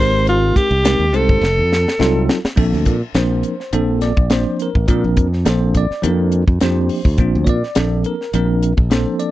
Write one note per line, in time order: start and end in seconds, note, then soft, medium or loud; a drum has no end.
0.00 0.52 G#1 loud
0.00 0.68 G#3 medium
0.00 0.68 C4 medium
0.00 0.68 D#4 medium
0.00 0.69 G4 medium
0.00 0.69 A#4 medium
0.00 0.24 C5 loud
0.27 0.58 F4 medium
0.27 closed hi-hat medium
0.56 1.17 G4 medium
0.56 muted fingered electric bass stroke soft
0.56 kick medium
0.56 closed hi-hat medium
0.71 0.98 C2 medium
0.84 1.03 G#3 medium
0.84 1.04 C4 medium
0.84 1.04 D#4 medium
0.84 1.04 G4 medium
0.84 1.05 A#4 medium
0.84 snare loud
0.84 closed hi-hat medium
0.99 1.13 D#2 medium
1.13 1.28 C2 loud
1.13 1.42 G#3 medium
1.13 1.42 C4 medium
1.13 1.42 D#4 medium
1.13 1.42 G4 medium
1.13 2.30 A4 medium
1.13 1.43 C5 medium
1.13 closed hi-hat medium
1.29 1.41 G1 medium
1.29 kick medium
1.41 1.60 F1 loud
1.41 snare medium
1.58 1.85 F2 medium
1.73 snare medium
1.88 snare medium
1.99 2.27 C2 medium
1.99 2.37 F#3 medium
1.99 2.37 C4 medium
1.99 2.37 D#4 medium
1.99 2.38 F4 medium
1.99 2.38 A4 loud
1.99 snare medium
2.29 snare loud
2.44 muted fingered electric bass stroke soft
2.44 snare medium
2.56 2.72 A#1 medium
2.56 2.95 F3 medium
2.56 2.94 A#3 medium
2.56 2.95 C4 medium
2.56 2.95 D4 medium
2.56 2.95 A4 medium
2.56 kick loud
2.56 crash medium
2.73 2.85 D2 medium
2.73 snare soft
2.85 3.01 A#2 medium
2.85 kick medium
2.85 closed hi-hat medium
3.14 3.42 A#1 medium
3.14 3.53 F3 medium
3.14 3.53 A#3 medium
3.14 3.53 C4 medium
3.14 3.53 D4 medium
3.14 3.54 A#4 medium
3.14 3.98 C5 medium
3.14 snare loud
3.14 closed hi-hat medium
3.43 closed hi-hat medium
3.60 snare soft
3.73 4.14 A#1 medium
3.73 4.10 F3 medium
3.73 4.11 A#3 medium
3.73 4.11 C4 medium
3.73 4.11 D4 medium
3.73 4.11 A4 medium
3.73 closed hi-hat medium
4.01 4.55 D5 loud
4.01 snare soft
4.01 closed hi-hat medium
4.17 4.44 A#1 medium
4.17 kick medium
4.30 4.68 F3 medium
4.30 4.68 A#3 medium
4.30 4.69 C4 medium
4.30 4.69 D4 medium
4.30 4.69 C5 medium
4.30 snare loud
4.30 closed hi-hat medium
4.59 4.89 A#4 medium
4.59 closed hi-hat medium
4.75 4.87 A1 medium
4.75 kick medium
4.88 5.03 A#2 loud
4.88 5.26 F3 medium
4.88 5.26 A#3 medium
4.88 5.26 C4 medium
4.88 5.26 D4 medium
4.88 5.27 A#4 medium
4.88 kick medium
4.88 closed hi-hat medium
5.04 5.16 A#1 medium
5.17 5.44 F2 medium
5.17 kick medium
5.17 closed hi-hat medium
5.33 snare soft
5.45 5.87 A#1 medium
5.45 5.83 F3 medium
5.45 5.83 A#3 medium
5.45 5.83 C4 medium
5.45 5.84 D4 medium
5.45 5.84 A4 medium
5.45 5.75 C5 medium
5.45 snare loud
5.45 closed hi-hat medium
5.74 6.04 D5 loud
5.74 kick medium
5.74 closed hi-hat medium
5.91 muted fingered electric bass stroke soft
5.91 snare soft
6.02 6.45 F2 medium
6.02 6.40 F3 medium
6.02 6.41 A#3 medium
6.02 6.41 C4 medium
6.02 6.41 D4 medium
6.02 6.41 A#4 medium
6.02 closed hi-hat medium
6.32 closed hi-hat medium
6.47 6.60 F2 medium
6.47 kick medium
6.61 6.88 F2 medium
6.61 6.99 F3 medium
6.61 6.99 A#3 medium
6.61 6.99 C4 medium
6.61 7.00 D4 medium
6.61 7.00 G4 medium
6.61 7.44 C5 medium
6.61 snare medium
6.61 closed hi-hat medium
6.89 open hi-hat medium
7.05 7.17 D2 medium
7.05 kick medium
7.18 7.33 A#1 medium
7.18 7.56 F3 medium
7.18 7.56 A#3 medium
7.18 7.56 C4 medium
7.18 7.57 D4 medium
7.18 7.57 F4 medium
7.18 kick loud
7.18 closed hi-hat medium
7.35 7.46 D2 medium
7.44 7.61 A#2 medium
7.44 7.48 C#5 medium
7.44 kick medium
7.44 closed hi-hat medium
7.49 8.02 D5 medium
7.63 snare soft
7.75 8.03 A#1 medium
7.75 8.13 F3 medium
7.75 8.14 A#3 medium
7.75 8.14 C4 medium
7.75 8.14 D4 medium
7.75 8.14 A4 medium
7.75 snare loud
7.75 closed hi-hat medium
8.04 8.34 A#4 medium
8.04 closed hi-hat medium
8.21 snare soft
8.33 8.75 A#1 medium
8.33 8.71 F3 medium
8.33 8.71 A#3 medium
8.33 8.71 C4 medium
8.33 8.72 D4 medium
8.33 8.72 A#4 medium
8.33 closed hi-hat medium
8.63 closed hi-hat medium
8.77 9.04 A#1 medium
8.77 kick medium
8.90 9.28 F3 medium
8.90 9.29 A#3 medium
8.90 9.29 C4 medium
8.90 9.29 D4 medium
8.90 9.29 A4 medium
8.90 9.19 C5 medium
8.90 snare medium
8.90 closed hi-hat medium
9.20 9.31 D5 medium
9.20 closed hi-hat medium